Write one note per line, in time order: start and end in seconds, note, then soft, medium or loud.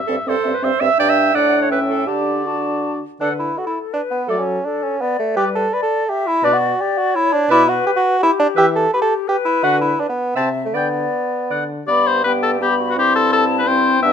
0.00 0.30 E5 medium
0.07 0.18 G2 medium
0.07 0.17 C4 medium
0.07 0.16 A4 medium
0.07 0.15 E5 medium
0.26 0.37 G2 medium
0.26 0.35 C4 medium
0.26 0.56 A4 medium
0.26 0.66 C5 medium
0.26 0.32 E5 medium
0.43 0.54 G2 medium
0.43 0.53 C4 medium
0.43 0.49 E5 medium
0.54 0.65 B4 medium
0.62 0.72 G2 medium
0.62 0.71 C4 medium
0.62 0.82 C5 medium
0.62 0.68 E5 medium
0.62 0.99 E5 medium
0.80 0.90 G2 medium
0.80 0.89 C4 medium
0.80 0.86 E5 medium
0.80 0.99 E5 loud
0.99 1.33 G2 medium
0.99 1.32 D4 medium
0.99 1.11 D5 loud
0.99 1.35 E5 medium
0.99 1.34 G5 medium
1.10 1.37 E5 medium
1.34 2.09 A2 medium
1.34 1.72 D4 medium
1.34 1.61 D5 loud
1.34 1.71 F#5 medium
1.34 1.70 F#5 medium
1.62 1.71 C#5 medium
1.69 2.07 C#4 medium
1.69 1.80 B4 medium
1.69 2.08 E5 medium
1.69 2.09 G5 medium
1.90 2.06 A4 medium
2.07 3.02 D3 medium
2.07 2.45 D4 soft
2.07 2.48 G4 medium
2.07 3.00 D5 medium
2.07 2.45 A5 soft
2.46 3.01 D4 soft
2.46 3.02 F#4 medium
2.46 2.93 A5 soft
3.20 3.51 D3 medium
3.20 3.29 D4 medium
3.20 3.34 A4 medium
3.20 3.59 B4 medium
3.20 3.33 F#5 medium
3.39 3.59 E4 medium
3.58 3.66 F#4 medium
3.58 3.95 A4 medium
3.67 3.79 E4 medium
3.93 4.01 D4 medium
3.93 4.28 B4 medium
4.11 4.31 B3 medium
4.28 4.59 F#3 medium
4.28 4.40 A3 medium
4.28 4.64 A4 medium
4.28 4.41 A4 medium
4.28 4.42 D5 medium
4.39 4.66 C#4 medium
4.64 4.84 D4 medium
4.64 5.00 A4 medium
4.83 5.03 C#4 medium
5.01 5.19 B3 medium
5.01 5.37 D5 medium
5.19 5.36 A3 medium
5.36 5.67 G3 medium
5.36 5.45 G4 medium
5.36 5.49 B4 medium
5.36 5.71 B4 medium
5.36 5.50 D5 medium
5.55 5.75 A4 medium
5.72 5.82 B4 medium
5.72 6.07 D5 medium
5.83 6.11 A4 medium
6.08 6.28 G4 medium
6.08 6.45 E5 medium
6.27 6.46 E4 loud
6.42 6.73 B2 medium
6.42 6.55 D4 medium
6.42 6.56 B4 medium
6.42 6.77 D5 medium
6.42 6.57 D5 medium
6.53 6.82 F#4 medium
6.78 6.99 G4 medium
6.78 7.15 D5 medium
6.98 7.17 F#4 loud
7.14 7.34 E4 loud
7.14 7.49 C#5 medium
7.33 7.50 D4 loud
7.49 7.80 B2 medium
7.49 7.70 E4 loud
7.49 7.63 B4 medium
7.49 8.20 B4 medium
7.49 7.64 D5 medium
7.69 7.86 F#4 medium
7.87 7.91 G4 loud
7.96 8.22 F#4 loud
8.20 8.31 E4 loud
8.20 8.91 G4 medium
8.40 8.48 D4 loud
8.56 8.87 E3 medium
8.56 8.66 G4 loud
8.56 8.69 B4 medium
8.56 8.70 E5 medium
8.75 8.93 A4 loud
8.92 9.29 G4 medium
8.92 9.01 B4 loud
9.02 9.14 A4 medium
9.28 9.37 G4 loud
9.28 10.08 B4 medium
9.45 9.65 E4 loud
9.63 9.93 D3 medium
9.63 9.81 F#4 loud
9.63 9.76 B4 medium
9.63 9.76 F#5 medium
9.81 10.01 E4 medium
10.00 10.09 D4 medium
10.09 10.36 B3 medium
10.35 10.68 C3 medium
10.35 10.49 C4 medium
10.35 10.49 E5 medium
10.35 10.76 E5 medium
10.35 10.50 A5 medium
10.65 10.76 A3 medium
10.74 11.06 D3 medium
10.74 11.70 B3 medium
10.74 10.88 D5 medium
10.74 11.70 D5 medium
10.74 10.89 G5 medium
11.50 11.83 D3 medium
11.50 11.64 D5 soft
11.50 11.65 F#5 medium
11.87 13.99 G2 medium
11.87 12.23 B3 medium
11.87 12.22 G4 medium
11.87 12.09 D5 loud
11.87 12.23 B5 medium
12.07 12.24 C5 medium
12.24 12.61 B3 medium
12.24 12.60 G4 medium
12.24 12.33 B4 medium
12.24 12.63 G5 medium
12.43 12.51 A4 medium
12.61 12.98 B3 medium
12.61 12.69 G4 medium
12.61 12.75 G4 medium
12.61 12.98 B5 medium
12.79 12.99 F#4 medium
12.90 12.98 F#4 medium
12.96 13.66 C4 medium
12.96 13.68 E4 medium
12.96 13.15 G4 loud
12.96 13.36 C6 medium
13.16 13.32 A4 loud
13.33 13.45 A4 loud
13.33 13.70 A5 medium
13.59 13.70 B4 medium
13.67 14.01 C4 medium
13.67 14.03 E4 medium
13.67 14.02 C5 loud
13.67 14.13 G5 medium
14.02 14.13 G2 medium
14.02 14.13 B3 medium
14.02 14.13 D4 medium
14.02 14.13 E5 loud